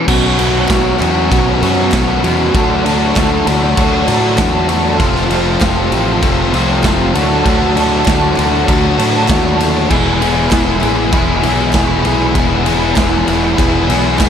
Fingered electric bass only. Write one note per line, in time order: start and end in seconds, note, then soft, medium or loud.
0.08 0.66 B1 loud
0.70 0.98 B1 medium
1.01 1.29 E2 medium
1.32 1.60 B1 medium
1.62 1.91 F#2 medium
1.93 2.22 B1 medium
2.24 2.52 E2 medium
2.54 3.12 D2 loud
3.17 3.45 D2 medium
3.47 3.75 D2 medium
3.78 4.06 D2 medium
4.08 4.37 A2 medium
4.39 4.96 E2 medium
5.00 5.57 F1 medium
5.62 5.90 F1 medium
5.92 6.20 A1 medium
6.23 6.51 F1 medium
6.54 6.82 C2 medium
6.84 7.12 F1 medium
7.16 7.43 D2 medium
7.46 8.03 D2 loud
8.07 8.35 D2 medium
8.38 8.66 D2 medium
8.69 8.97 D2 medium
8.99 9.27 A2 medium
9.29 9.86 D#2 medium
9.91 10.48 E1 loud
10.52 10.80 E1 medium
10.84 11.11 A1 medium
11.13 11.41 E1 medium
11.44 11.72 B1 medium
11.74 12.02 E1 medium
12.05 12.33 B1 medium
12.35 12.92 E1 loud
12.97 13.25 E1 medium
13.28 13.56 E1 medium
13.59 13.87 E1 loud
13.89 14.17 B1 medium
14.20 14.29 E1 medium